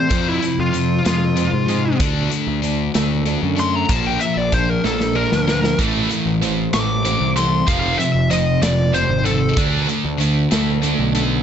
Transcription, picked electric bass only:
0.10 0.38 F2 medium
0.59 1.00 F2 medium
1.07 1.48 F2 medium
1.53 1.94 G#2 medium
2.00 2.27 D2 medium
2.47 2.89 D2 medium
2.95 3.36 D2 medium
3.43 3.84 F#2 medium
3.90 4.17 A#1 medium
4.37 4.78 A#1 medium
4.84 5.26 A#1 medium
5.33 5.73 D2 medium
5.79 6.07 A1 medium
6.26 6.67 A1 medium
6.74 7.15 A1 medium
7.21 7.62 C2 medium
7.68 7.95 F1 medium
8.15 8.56 F1 medium
8.62 9.03 F1 loud
9.09 9.51 G#1 loud
9.57 9.85 D2 medium
10.05 10.46 D2 medium
10.52 10.93 D2 loud
10.99 11.41 B1 medium

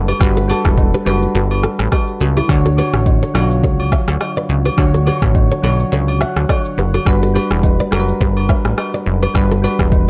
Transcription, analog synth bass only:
0.00 0.13 F#1 medium
0.21 0.53 G1 loud
0.65 0.95 E1 medium
1.06 1.27 F#1 loud
1.35 1.67 G1 loud
1.79 1.89 A1 medium
2.21 2.42 C#2 medium
2.49 2.82 D2 loud
2.94 3.24 A1 medium
3.35 3.65 B1 medium
3.63 3.96 C#2 medium
4.08 4.17 D2 medium
4.49 4.70 C#2 medium
4.78 5.10 D2 loud
5.22 5.53 A1 loud
5.64 5.84 B1 medium
5.92 6.25 C#2 medium
6.36 6.46 D2 medium
6.78 6.99 F#1 medium
7.06 7.39 G1 loud
7.51 7.81 E1 medium
7.92 8.13 F#1 loud
8.21 8.53 G1 medium
8.65 8.74 A1 medium
9.06 9.27 F#1 medium
9.35 9.67 G1 loud
9.79 10.10 E1 medium

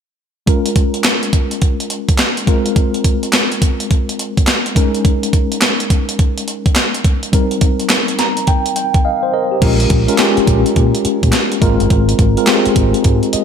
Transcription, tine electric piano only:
0.46 2.43 G#3 medium
0.46 2.43 C#4 medium
0.46 2.44 F4 medium
0.46 2.44 A#4 medium
2.46 4.71 G#3 medium
2.46 4.72 C4 medium
2.46 4.72 F4 medium
2.46 4.73 A#4 medium
4.75 7.00 G#3 medium
4.75 7.01 C#4 medium
4.75 7.01 D#4 medium
4.75 7.01 A#4 medium
7.32 9.57 G3 medium
7.32 9.58 C4 medium
7.32 9.58 D#4 medium
7.32 9.02 A#4 medium
8.19 8.46 A#5 medium
8.48 8.74 G5 medium
8.76 9.03 G5 medium
9.05 9.22 D#5 medium
9.05 9.31 F5 medium
9.23 9.33 C5 medium
9.33 9.51 A#4 medium
9.33 9.60 D#5 medium
9.52 9.79 G4 medium
9.61 10.06 G#3 medium
9.61 10.06 C#4 medium
9.61 10.06 F4 medium
9.61 10.06 A#4 medium
10.08 10.17 G#3 medium
10.08 10.18 C#4 medium
10.08 10.18 F4 medium
10.08 10.19 A#4 medium
10.18 11.29 G#3 medium
10.18 11.29 C#4 medium
10.18 11.29 F4 medium
10.18 11.29 G4 medium
11.61 12.32 G#3 medium
11.61 11.70 A#3 medium
11.61 12.33 F4 medium
11.61 12.33 A#4 medium
11.68 12.36 C4 medium
12.37 12.46 G#3 medium
12.37 12.46 C4 medium
12.37 12.47 F4 medium
12.37 12.47 A#4 medium
12.47 13.44 G#3 medium
12.47 13.44 C4 medium
12.47 13.44 F4 medium
12.47 12.56 G4 medium
12.55 13.44 G#4 medium
13.34 13.44 D#5 medium

